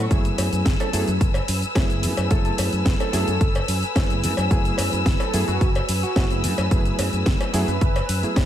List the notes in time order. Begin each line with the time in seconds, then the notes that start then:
0.10 F#1 F#3 A3 B3 E4 G#4 B4 G#5 E6, kick, closed hi-hat, shaker
0.25 closed hi-hat, shaker
0.38 F#2, open hi-hat, cowbell, shaker
0.53 F#2, closed hi-hat, shaker
0.66 F#1, kick, snare, closed hi-hat, shaker
0.80 A4, closed hi-hat, cowbell, shaker
0.93 F#2 F#3 A3 B3 E4 G#4, open hi-hat, shaker
1.08 F#2, closed hi-hat, shaker
1.21 F#1, kick, closed hi-hat, shaker
1.34 closed hi-hat, cowbell, shaker
1.48 F#2, open hi-hat, shaker
1.62 muted fingered electric bass stroke, closed hi-hat, shaker
1.75 F#1 F#3 A3 B3 E4 G#4, kick, snare, closed hi-hat, cowbell, shaker
1.90 closed hi-hat, shaker
2.03 F#2, open hi-hat, shaker
2.17 F#2, closed hi-hat, cowbell, shaker
2.30 F#1 F#3 A3 B3 E4 G#4 A4, kick, closed hi-hat, shaker
2.45 A4, closed hi-hat, shaker
2.58 F#2, open hi-hat, cowbell, shaker
2.73 F#2, closed hi-hat, shaker
2.86 F#1, kick, snare, closed hi-hat, shaker
3.00 A4, closed hi-hat, cowbell, shaker
3.13 F#2 F#3 A3 B3 E4 G#4, snare, open hi-hat, shaker
3.28 F#2, closed hi-hat, shaker
3.41 F#1, kick, closed hi-hat, shaker
3.55 closed hi-hat, cowbell, shaker
3.68 F#2, open hi-hat, shaker
3.83 muted fingered electric bass stroke, closed hi-hat, shaker
3.96 F#1 F#3 A3 B3 E4 G#4, kick, snare, closed hi-hat, cowbell, shaker
4.10 closed hi-hat, shaker
4.24 F#2, open hi-hat, shaker
4.37 F#2, closed hi-hat, cowbell, shaker
4.50 F#1 F#3 A3 B3 E4 G#4, kick, closed hi-hat, shaker
4.65 closed hi-hat, shaker
4.78 F#2, open hi-hat, cowbell, shaker
4.93 F#2, closed hi-hat, shaker
5.06 F#1, kick, snare, closed hi-hat, shaker
5.20 A4, closed hi-hat, cowbell, shaker
5.33 F#2 F#3 A3 B3 E4 G#4, open hi-hat, shaker
5.48 F#2 F#4, closed hi-hat, shaker
5.61 F#1, kick, closed hi-hat, shaker
5.75 closed hi-hat, cowbell, shaker
5.89 F#2, open hi-hat, shaker
6.03 F#4, muted fingered electric bass stroke, closed hi-hat, shaker
6.16 F#1 F#3 A3 B3 E4 G#4, kick, snare, closed hi-hat, cowbell, shaker
6.30 closed hi-hat, shaker
6.44 F#2, open hi-hat, shaker
6.58 F#2, closed hi-hat, cowbell, shaker
6.70 F#1 F#3 A3 B3 E4 G#4, kick, closed hi-hat, shaker
6.85 closed hi-hat, shaker
6.99 F#2, open hi-hat, cowbell, shaker
7.13 F#2, closed hi-hat, shaker
7.26 F#1, kick, snare, closed hi-hat, shaker
7.41 closed hi-hat, cowbell, shaker
7.53 F#2 F#3 A3 B3 E4 G#4, snare, open hi-hat, shaker
7.68 F#2 B4, closed hi-hat, shaker
7.81 F#1, kick, closed hi-hat, shaker
7.96 closed hi-hat, cowbell, shaker
8.09 F#2, open hi-hat, shaker
8.22 F#3 A3 B3 E4 G#4, muted fingered electric bass stroke, closed hi-hat, shaker
8.36 F#1, kick, snare, closed hi-hat, cowbell, shaker